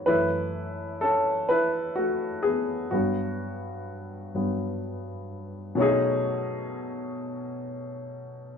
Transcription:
X:1
M:6/8
L:1/8
Q:3/8=42
K:Bdor
V:1 name="Grand piano"
[EB]2 [CA] [EB] [A,F] [B,G] | [B,F]4 z2 | [B,,F,A,C^DG]6 |]
V:2 name="Grand piano" clef=bass
[F,,E,A,] z4 z | [=G,,F,]3 [G,,F,B,] z2 | z6 |]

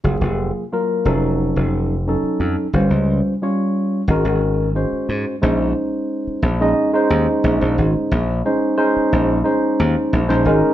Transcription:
X:1
M:4/4
L:1/16
Q:1/4=89
K:Bbm
V:1 name="Tine electric piano"
[G,B,FA]3 z [G,B,FB]2 [G,DE=A]4- [G,DEA] z [G,DEA]3 z | [=G,DFc]3 z [G,DFd]3 z [A,D_GB]3 z [A,DGc]3 z | [A,DEc]6 z [A,DEe]2 [A,DEc]6- [A,DEc] | z2 [A,DEc]2 [A,DEc]3 z [A,DEc]4 z [A,DEc] [A,DEB]2 |]
V:2 name="Slap bass" clef=bass
G,,, F,,,2 z3 F,,,3 F,,,4 z F,, z | =G,,, D,,2 z4 z A,,, A,,,4 z A,, z | B,,,2 z4 B,,,2 z2 E,, z B,,, B,,, A,,, z | B,,,2 z4 B,,,2 z2 E,, z B,,, B,,, A,,, z |]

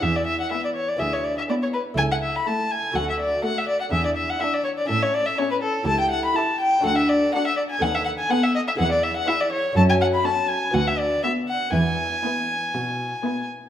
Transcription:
X:1
M:4/4
L:1/16
Q:1/4=123
K:Emix
V:1 name="Violin"
e d e f e d c d e c d e d c B2 | g f e b a2 g2 f e d2 f e d f | e d e f e d c d e c d e c B A2 | a =g f b a2 g2 f e d2 f e d ^g |
f e f g f e ^d e f =d e f e d c2 | a g f b a2 g2 f e d2 e2 f2 | g12- g2 z2 |]
V:2 name="Violin section"
z4 G4 z4 G4 | z4 A4 z4 A4 | z4 G4 z4 A4 | z4 A4 z4 A4 |
z4 B4 z4 B4 | z4 A4 z4 B4 | z4 B4 z4 B4 |]
V:3 name="Violin section"
z4 E4 z4 E4 | z4 E4 z4 F4 | z4 E4 z4 E4 | z4 =G4 z4 F4 |
z4 A4 z4 G4 | z4 F4 z4 F4 | z4 E4 z4 E4 |]
V:4 name="Lute"
[B,EG]8 [B,EG]8 | [A,EA]8 [A,FA]8 | [DEG]8 [CEA]8 | [E=GA]8 [DFA]8 |
[B,AB]8 [EGB]8 | [CFA]8 [B,FB]8 | [B,EB]16 |]
V:5 name="Lute" clef=bass
E,,4 z4 D,,4 z4 | z8 D,,4 z4 | E,,4 z4 A,,4 z4 | z8 D,,4 z4 |
^D,,4 z4 E,,4 z4 | F,,4 z4 D,,4 z4 | E,,4 z4 B,,4 z4 |]
V:6 name="Viola section"
z4 B,4 z4 B,4 | z4 A,4 z4 A,4 | z4 D4 z4 C4 | z4 E4 z4 D4 |
z4 B,4 z4 E4 | z4 C4 z4 B,4 | z4 B,4 z4 B,4 |]
V:7 name="Cello section" clef=bass
E,,4 z4 D,,4 z4 | C,,4 z4 D,,4 z4 | E,,4 z4 A,,4 z4 | C,,4 z4 D,,4 z4 |
^D,,4 z4 E,,4 z4 | F,,4 z4 D,,4 z4 | E,,4 z4 B,,4 z4 |]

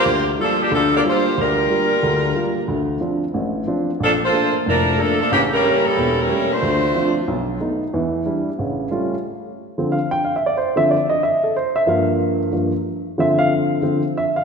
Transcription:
X:1
M:4/4
L:1/8
Q:"Swing" 1/4=183
K:Dm
V:1 name="Saxophone section"
[B,FGc] z [F,B,DA] [F,B,DG] [F,B,DA] [B,FGd] [B,FGc]2 | [G,DFB]8 | z8 | [F,B,DA] [B,FAc]2 z [F,DAB]2 [F,B,DA] [F,B,DA] |
[E,B,^CG] [G,CEB]2 [G,CEA]2 [G,CEB]2 [A,DF=c]- | [A,DFc]3 z4 z | z8 | z8 |
z8 | z8 | z8 |]
V:2 name="Upright piano"
z8 | z8 | z8 | z8 |
z8 | z8 | z8 | z4 f g (3f e d |
c e d _e =e A c e | f3 z4 z | e f z4 e f |]
V:3 name="Upright piano" clef=bass
D,,2 [G,B,F] z [D,,D,]2 [G,B,F] z | D,,2 [G,B,F] z [D,,D,]2 [G,B,F] z | D,,2 [F,CD] z [A,,,A,,]2 [F,CD] z | B,,,2 [A,B,D] z [F,,,A,,]2 [A,B,D] z |
[A,,,^C,]2 [G,A,B,^C] z [E,,,E,,]2 [G,A,B,C] z | D,,2 [F,CD] z =B,,,2 [A,=B,^D] z | [E,,E,]2 [G,DE] z [A,,,^C,]2 [G,A,^C^E] z | z3 [D,F,C] z4 |
z [D,F,C] z6 | [G,,F,B,]4 [G,,F,B,] z3 | [D,F,C]4 [D,F,C] z3 |]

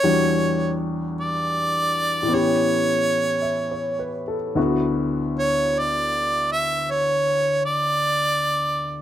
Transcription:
X:1
M:4/4
L:1/16
Q:"Swing" 1/4=53
K:Dphr
V:1 name="Harmonica"
_d2 z2 =d4 ^c6 z2 | z2 _d2 =d2 =e2 _d2 =d6 |]
V:2 name="Grand piano"
z12 =e ^c =B A | z16 |]
V:3 name="Grand piano"
[=E,,=E,G,D_G]8 [A,,E,=B,^C=G]8 | [D,,D,=B,=E^F]16 |]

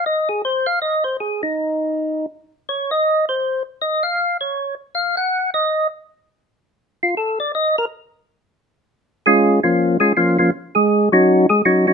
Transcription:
X:1
M:4/4
L:1/8
Q:"Swing" 1/4=161
K:Bbm
V:1 name="Tonewheel organ"
e A c f e c A E- | E4 z2 d e- | e c2 z e f2 d- | d z f g2 e2 z |
z4 z F =A =d | e B z6 | z [A,DFA]2 [F,B,DF]2 [A,DFA] [F,B,DF] [F,B,DF] | z [A,A]2 [G,DEG]2 [A,A] [G,DEG] [G,DEG] |]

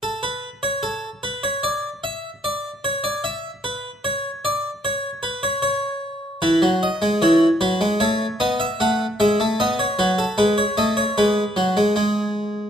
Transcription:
X:1
M:4/4
L:1/16
Q:1/4=76
K:A
V:1 name="Harpsichord"
A B2 c A2 B c d2 e2 d2 c d | e2 B2 c2 d2 c2 B c c4 | B2 ^d2 c2 B2 c2 d e f2 e2 | ^d c B A B c d c B8 |]
V:2 name="Harpsichord" clef=bass
z16 | z16 | E, F,2 G, E,2 F, G, A,2 B,2 A,2 G, A, | B,2 F,2 G,2 A,2 G,2 F, G, G,4 |]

